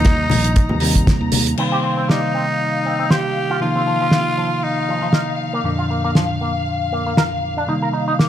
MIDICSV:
0, 0, Header, 1, 7, 480
1, 0, Start_track
1, 0, Tempo, 508475
1, 1490, Time_signature, 4, 2, 24, 8
1, 7824, End_track
2, 0, Start_track
2, 0, Title_t, "String section"
2, 0, Program_c, 0, 48
2, 0, Note_on_c, 0, 82, 83
2, 1497, Note_on_c, 0, 77, 75
2, 1502, Note_off_c, 0, 82, 0
2, 7824, Note_off_c, 0, 77, 0
2, 7824, End_track
3, 0, Start_track
3, 0, Title_t, "Tenor saxophone"
3, 0, Program_c, 1, 66
3, 0, Note_on_c, 1, 63, 97
3, 1010, Note_off_c, 1, 63, 0
3, 1499, Note_on_c, 1, 60, 81
3, 1982, Note_on_c, 1, 63, 95
3, 1996, Note_off_c, 1, 60, 0
3, 2934, Note_on_c, 1, 67, 92
3, 2948, Note_off_c, 1, 63, 0
3, 3409, Note_off_c, 1, 67, 0
3, 3414, Note_on_c, 1, 65, 106
3, 4373, Note_on_c, 1, 63, 82
3, 4388, Note_off_c, 1, 65, 0
3, 5091, Note_off_c, 1, 63, 0
3, 7824, End_track
4, 0, Start_track
4, 0, Title_t, "Clean electric guitar"
4, 0, Program_c, 2, 27
4, 1491, Note_on_c, 2, 60, 74
4, 1530, Note_off_c, 2, 60, 0
4, 1623, Note_on_c, 2, 67, 68
4, 1676, Note_off_c, 2, 67, 0
4, 1730, Note_on_c, 2, 60, 67
4, 1829, Note_off_c, 2, 60, 0
4, 1863, Note_on_c, 2, 60, 91
4, 1916, Note_off_c, 2, 60, 0
4, 1971, Note_on_c, 2, 55, 68
4, 2070, Note_off_c, 2, 55, 0
4, 2211, Note_on_c, 2, 60, 65
4, 2310, Note_off_c, 2, 60, 0
4, 2692, Note_on_c, 2, 60, 69
4, 2790, Note_off_c, 2, 60, 0
4, 2825, Note_on_c, 2, 60, 84
4, 2877, Note_off_c, 2, 60, 0
4, 2932, Note_on_c, 2, 72, 68
4, 2970, Note_off_c, 2, 72, 0
4, 3304, Note_on_c, 2, 65, 90
4, 3357, Note_off_c, 2, 65, 0
4, 3416, Note_on_c, 2, 53, 74
4, 3453, Note_off_c, 2, 53, 0
4, 3546, Note_on_c, 2, 60, 69
4, 3598, Note_off_c, 2, 60, 0
4, 3652, Note_on_c, 2, 53, 67
4, 3750, Note_off_c, 2, 53, 0
4, 3785, Note_on_c, 2, 53, 90
4, 3837, Note_off_c, 2, 53, 0
4, 3890, Note_on_c, 2, 48, 73
4, 3989, Note_off_c, 2, 48, 0
4, 4133, Note_on_c, 2, 53, 65
4, 4231, Note_off_c, 2, 53, 0
4, 4613, Note_on_c, 2, 53, 71
4, 4711, Note_off_c, 2, 53, 0
4, 4742, Note_on_c, 2, 53, 88
4, 4796, Note_off_c, 2, 53, 0
4, 4851, Note_on_c, 2, 65, 74
4, 4890, Note_off_c, 2, 65, 0
4, 5223, Note_on_c, 2, 58, 85
4, 5276, Note_off_c, 2, 58, 0
4, 5334, Note_on_c, 2, 58, 71
4, 5371, Note_off_c, 2, 58, 0
4, 5464, Note_on_c, 2, 65, 71
4, 5517, Note_off_c, 2, 65, 0
4, 5575, Note_on_c, 2, 58, 67
4, 5672, Note_off_c, 2, 58, 0
4, 5706, Note_on_c, 2, 58, 93
4, 5758, Note_off_c, 2, 58, 0
4, 5813, Note_on_c, 2, 53, 76
4, 5911, Note_off_c, 2, 53, 0
4, 6054, Note_on_c, 2, 58, 65
4, 6151, Note_off_c, 2, 58, 0
4, 6536, Note_on_c, 2, 58, 71
4, 6632, Note_off_c, 2, 58, 0
4, 6670, Note_on_c, 2, 58, 85
4, 6720, Note_off_c, 2, 58, 0
4, 6777, Note_on_c, 2, 70, 73
4, 6813, Note_off_c, 2, 70, 0
4, 7146, Note_on_c, 2, 62, 88
4, 7198, Note_off_c, 2, 62, 0
4, 7255, Note_on_c, 2, 63, 75
4, 7292, Note_off_c, 2, 63, 0
4, 7386, Note_on_c, 2, 70, 68
4, 7438, Note_off_c, 2, 70, 0
4, 7490, Note_on_c, 2, 63, 70
4, 7589, Note_off_c, 2, 63, 0
4, 7625, Note_on_c, 2, 63, 95
4, 7677, Note_off_c, 2, 63, 0
4, 7732, Note_on_c, 2, 58, 76
4, 7824, Note_off_c, 2, 58, 0
4, 7824, End_track
5, 0, Start_track
5, 0, Title_t, "Tine electric piano"
5, 0, Program_c, 3, 4
5, 0, Note_on_c, 3, 48, 87
5, 0, Note_on_c, 3, 51, 81
5, 0, Note_on_c, 3, 55, 82
5, 0, Note_on_c, 3, 58, 83
5, 0, Note_on_c, 3, 63, 106
5, 738, Note_off_c, 3, 48, 0
5, 740, Note_off_c, 3, 51, 0
5, 742, Note_off_c, 3, 55, 0
5, 745, Note_off_c, 3, 58, 0
5, 747, Note_off_c, 3, 63, 0
5, 761, Note_on_c, 3, 48, 90
5, 764, Note_on_c, 3, 51, 80
5, 770, Note_on_c, 3, 55, 80
5, 774, Note_on_c, 3, 58, 80
5, 778, Note_on_c, 3, 60, 100
5, 1460, Note_off_c, 3, 48, 0
5, 1461, Note_off_c, 3, 51, 0
5, 1464, Note_off_c, 3, 55, 0
5, 1466, Note_off_c, 3, 58, 0
5, 1468, Note_off_c, 3, 60, 0
5, 1482, Note_on_c, 3, 48, 62
5, 1486, Note_on_c, 3, 51, 57
5, 1489, Note_on_c, 3, 55, 60
5, 1494, Note_on_c, 3, 58, 61
5, 1500, Note_on_c, 3, 63, 72
5, 3380, Note_off_c, 3, 48, 0
5, 3382, Note_off_c, 3, 51, 0
5, 3384, Note_off_c, 3, 55, 0
5, 3386, Note_off_c, 3, 58, 0
5, 3389, Note_off_c, 3, 63, 0
5, 3401, Note_on_c, 3, 48, 67
5, 3405, Note_on_c, 3, 51, 58
5, 3411, Note_on_c, 3, 53, 62
5, 3414, Note_on_c, 3, 58, 63
5, 3418, Note_on_c, 3, 63, 73
5, 5300, Note_off_c, 3, 48, 0
5, 5302, Note_off_c, 3, 51, 0
5, 5304, Note_off_c, 3, 53, 0
5, 5306, Note_off_c, 3, 58, 0
5, 5308, Note_off_c, 3, 63, 0
5, 5317, Note_on_c, 3, 41, 70
5, 5321, Note_on_c, 3, 46, 62
5, 5326, Note_on_c, 3, 50, 63
5, 5329, Note_on_c, 3, 53, 65
5, 5337, Note_on_c, 3, 62, 76
5, 7217, Note_off_c, 3, 41, 0
5, 7220, Note_off_c, 3, 46, 0
5, 7222, Note_off_c, 3, 50, 0
5, 7223, Note_off_c, 3, 53, 0
5, 7228, Note_off_c, 3, 62, 0
5, 7240, Note_on_c, 3, 48, 71
5, 7244, Note_on_c, 3, 51, 64
5, 7251, Note_on_c, 3, 55, 65
5, 7254, Note_on_c, 3, 58, 65
5, 7259, Note_on_c, 3, 63, 75
5, 7824, Note_off_c, 3, 48, 0
5, 7824, Note_off_c, 3, 51, 0
5, 7824, Note_off_c, 3, 55, 0
5, 7824, Note_off_c, 3, 58, 0
5, 7824, Note_off_c, 3, 63, 0
5, 7824, End_track
6, 0, Start_track
6, 0, Title_t, "Fingered electric bass"
6, 0, Program_c, 4, 33
6, 0, Note_on_c, 4, 39, 87
6, 243, Note_off_c, 4, 39, 0
6, 286, Note_on_c, 4, 34, 76
6, 605, Note_off_c, 4, 34, 0
6, 659, Note_on_c, 4, 39, 88
6, 963, Note_off_c, 4, 39, 0
6, 1139, Note_on_c, 4, 39, 90
6, 1444, Note_off_c, 4, 39, 0
6, 7824, End_track
7, 0, Start_track
7, 0, Title_t, "Drums"
7, 44, Note_on_c, 9, 38, 124
7, 44, Note_on_c, 9, 42, 61
7, 54, Note_on_c, 9, 36, 123
7, 138, Note_off_c, 9, 42, 0
7, 139, Note_off_c, 9, 38, 0
7, 148, Note_off_c, 9, 36, 0
7, 280, Note_on_c, 9, 63, 86
7, 293, Note_on_c, 9, 46, 97
7, 374, Note_off_c, 9, 63, 0
7, 387, Note_off_c, 9, 46, 0
7, 419, Note_on_c, 9, 42, 83
7, 513, Note_off_c, 9, 42, 0
7, 528, Note_on_c, 9, 42, 68
7, 533, Note_on_c, 9, 36, 109
7, 622, Note_off_c, 9, 42, 0
7, 628, Note_off_c, 9, 36, 0
7, 655, Note_on_c, 9, 64, 79
7, 749, Note_off_c, 9, 64, 0
7, 758, Note_on_c, 9, 46, 103
7, 852, Note_off_c, 9, 46, 0
7, 902, Note_on_c, 9, 36, 58
7, 902, Note_on_c, 9, 42, 72
7, 996, Note_off_c, 9, 36, 0
7, 997, Note_off_c, 9, 42, 0
7, 1013, Note_on_c, 9, 36, 114
7, 1013, Note_on_c, 9, 42, 65
7, 1018, Note_on_c, 9, 38, 117
7, 1107, Note_off_c, 9, 36, 0
7, 1108, Note_off_c, 9, 42, 0
7, 1113, Note_off_c, 9, 38, 0
7, 1244, Note_on_c, 9, 46, 119
7, 1247, Note_on_c, 9, 63, 86
7, 1338, Note_off_c, 9, 46, 0
7, 1341, Note_off_c, 9, 63, 0
7, 1386, Note_on_c, 9, 42, 79
7, 1480, Note_off_c, 9, 42, 0
7, 1487, Note_on_c, 9, 49, 67
7, 1581, Note_off_c, 9, 49, 0
7, 1978, Note_on_c, 9, 38, 110
7, 2072, Note_off_c, 9, 38, 0
7, 2931, Note_on_c, 9, 38, 111
7, 3026, Note_off_c, 9, 38, 0
7, 3883, Note_on_c, 9, 38, 102
7, 3978, Note_off_c, 9, 38, 0
7, 4840, Note_on_c, 9, 38, 102
7, 4934, Note_off_c, 9, 38, 0
7, 5808, Note_on_c, 9, 38, 107
7, 5902, Note_off_c, 9, 38, 0
7, 6772, Note_on_c, 9, 38, 108
7, 6866, Note_off_c, 9, 38, 0
7, 7736, Note_on_c, 9, 38, 101
7, 7824, Note_off_c, 9, 38, 0
7, 7824, End_track
0, 0, End_of_file